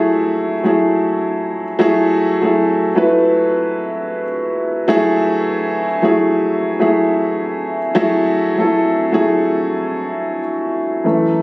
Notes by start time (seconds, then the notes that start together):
Already playing: F#3 A3 E4 G#4
0.64 F#3 A3 E4 G#4
1.79 F#3 A3 E4 G#4
2.41 F#3 A3 E4 G#4
2.95 F#3 A3 E4 B4
4.88 F#3 A3 E4 G#4
6.02 F#3 A3 E4 G#4
6.79 F#3 A3 E4 G#4
7.95 F#3 A3 E4 G#4
8.58 F#3 A3 E4 A4
9.12 F#3 A3 E4 G#4
11.04 F#2 E3 A3